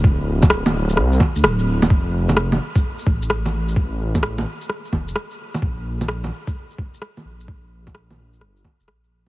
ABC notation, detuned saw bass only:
X:1
M:4/4
L:1/16
Q:"Swing 16ths" 1/4=129
K:F
V:1 name="Detuned saw bass" clef=bass
D,,,8 C,,2 z D,, D,,,4 | F,,,6 z4 A,,,6- | A,,,6 z4 F,,,2 z4 | B,,,6 z8 B,,,2- |
B,,,8 G,,,2 z F,,, B,,,4 |]